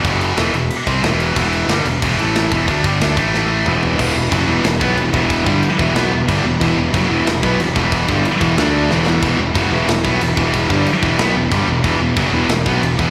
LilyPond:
<<
  \new Staff \with { instrumentName = "Pipe organ" } { \time 4/4 \key e \minor \tempo 4 = 183 << { r1 | r1 | r1 | <g b'>1~ |
<g b'>1~ | <g b'>1~ | <g b'>2 <a d''>4 <g b'>4~ | <g b'>1~ |
<g b'>1~ | <g b'>1 | } \\ { r1 | r1 | r1 | e'1~ |
e'1~ | e'1~ | e'2 d'4 e'4~ | e'1~ |
e'2. d'4~ | d'1 | } >> }
  \new Staff \with { instrumentName = "Distorted electric guitar" } { \clef bass \time 4/4 \key e \minor <fis, cis fis>4 <e, b, e>8 <e, b,>8 r8 <c g c'>8 <e, b, e>4 | <e, b, e>4 <g, d g>8 <e, b,>8 <e, b, e>8 <a, e a>4 <e, b, e>8 | <d a d'>8 <g, d g>8 <d a d'>8 <a, e a>4. <e, b, e>4 | <e, b, e>8 <e, b,>8 <fis, cis fis>8 <e, b, e>8 <e, b,>8 <b, fis b>8 <e, b,>8 <e, b, e>8~ |
<e, b, e>8 <g, d g>8 r8 <e, b, e>8 <b, fis b>8 <e, b,>8 <g, d g>8 <e, b,>8 | <e, b, e>8 <e, b,>8 <fis, cis fis>8 <e, b, e>8 <e, b,>8 <b, fis b>8 <e, b,>8 <e, b, e>8~ | <e, b, e>8 <g, d g>8 r8 <e, b, e>8 <d a d'>4 <e, b, e>4 | <e, b, e>8 <e, b,>8 <fis, cis fis>8 <e, b, e>8 <e, b,>8 <b, fis b>8 <e, b,>8 <e, b, e>8~ |
<e, b, e>8 <g, d g>8 r8 <e, b, e>8 <b, fis b>8 <e, b,>8 <g, d g>8 <e, b,>8 | <e, b, e>8 <e, b,>8 <fis, cis fis>8 <e, b, e>8 <e, b,>8 <b, fis b>8 <e, b,>8 <e, b, e>8 | }
  \new Staff \with { instrumentName = "Distorted electric guitar" } { \clef bass \time 4/4 \key e \minor <fis, cis fis>4 <e, b, e>8 <e, b,>8 r8 <c g c'>8 <e, b, e>4 | <e, b, e>4 <g, d g>8 <e, b,>8 <e, b, e>8 <a, e a>4 <e, b, e>8 | <d a d'>8 <g, d g>8 <d a d'>8 <a, e a>4. <e, b, e>4 | <e, b, e>8 <e, b,>8 <fis, cis fis>8 <e, b, e>8 <e, b,>8 <b, fis b>8 <e, b,>8 <e, b, e>8~ |
<e, b, e>8 <g, d g>8 r8 <e, b, e>8 <b, fis b>8 <e, b,>8 <g, d g>8 <e, b,>8 | <e, b, e>8 <e, b,>8 <fis, cis fis>8 <e, b, e>8 <e, b,>8 <b, fis b>8 <e, b,>8 <e, b, e>8~ | <e, b, e>8 <g, d g>8 r8 <e, b, e>8 <d a d'>4 <e, b, e>4 | <e, b, e>8 <e, b,>8 <fis, cis fis>8 <e, b, e>8 <e, b,>8 <b, fis b>8 <e, b,>8 <e, b, e>8~ |
<e, b, e>8 <g, d g>8 r8 <e, b, e>8 <b, fis b>8 <e, b,>8 <g, d g>8 <e, b,>8 | <e, b, e>8 <e, b,>8 <fis, cis fis>8 <e, b, e>8 <e, b,>8 <b, fis b>8 <e, b,>8 <e, b, e>8 | }
  \new Staff \with { instrumentName = "Distorted electric guitar" } { \clef bass \time 4/4 \key e \minor r1 | r1 | r1 | <e, b, e>8 <e, b,>8 <fis, cis fis>8 <e, b, e>8 <e, b,>8 <b, fis b>8 <e, b,>8 <e, b, e>8~ |
<e, b, e>8 <g, d g>8 r8 <e, b, e>8 <b, fis b>8 <e, b,>8 <g, d g>8 <e, b,>8 | <e, b, e>8 <e, b,>8 <fis, cis fis>8 <e, b, e>8 <e, b,>8 <b, fis b>8 <e, b,>8 <e, b, e>8~ | <e, b, e>8 <g, d g>8 r8 <e, b, e>8 <d a d'>4 <e, b, e>4 | <e, b, e>8 <e, b,>8 <fis, cis fis>8 <e, b, e>8 <e, b,>8 <b, fis b>8 <e, b,>8 <e, b, e>8~ |
<e, b, e>8 <g, d g>8 r8 <e, b, e>8 <b, fis b>8 <e, b,>8 <g, d g>8 <e, b,>8 | <e, b, e>8 <e, b,>8 <fis, cis fis>8 <e, b, e>8 <e, b,>8 <b, fis b>8 <e, b,>8 <e, b, e>8 | }
  \new Staff \with { instrumentName = "Fingered electric bass" } { \clef bass \time 4/4 \key e \minor fis,,4 e,,8 e,,8 r8 c,8 e,,4 | e,,4 g,,8 e,,8 e,,8 a,,4 e,,8 | d,8 g,,8 d,8 a,,4. e,,4 | e,,8 e,,8 fis,,8 e,,8 e,,8 b,,8 e,,8 e,,8~ |
e,,8 g,,8 r8 e,,8 b,,8 e,,8 g,,8 e,,8 | e,,8 e,,8 fis,,8 e,,8 e,,8 b,,8 e,,8 e,,8~ | e,,8 g,,8 r8 e,,8 d,4 e,,4 | e,,8 e,,8 fis,,8 e,,8 e,,8 b,,8 e,,8 e,,8~ |
e,,8 g,,8 r8 e,,8 b,,8 e,,8 g,,8 e,,8 | e,,8 e,,8 fis,,8 e,,8 e,,8 b,,8 e,,8 e,,8 | }
  \new DrumStaff \with { instrumentName = "Drums" } \drummode { \time 4/4 <cymc bd>8 cymc8 <cymc sn>8 cymc8 cymc8 <cymc bd>8 <cymc sn>8 cymc8 | <cymc bd>8 cymc8 <cymc sn>8 cymc8 <cymc bd>8 cymc8 <cymc sn>8 <cymc bd>8 | <cymc bd>8 <cymc bd>8 <cymc sn>8 <cymc bd>8 sn4 toml8 tomfh8 | <cymc bd>4 <cymc bd>4 <cymc sn>8 bd8 cymc8 bd8 |
<cymc bd>8 bd8 cymc8 bd8 <cymc sn>4 <cymc bd>4 | <cymc bd>4 <cymc bd>4 <cymc sn>8 bd8 cymc8 bd8 | <cymc bd>8 bd8 cymc8 bd8 <cymc sn>4 sn8 sn8 | <cymc bd>4 <cymc bd>4 <cymc sn>8 bd8 cymc8 bd8 |
<cymc bd>8 bd8 cymc8 bd8 <cymc sn>4 <cymc bd>4 | <cymc bd>4 <cymc bd>4 <cymc sn>8 bd8 cymc8 bd8 | }
>>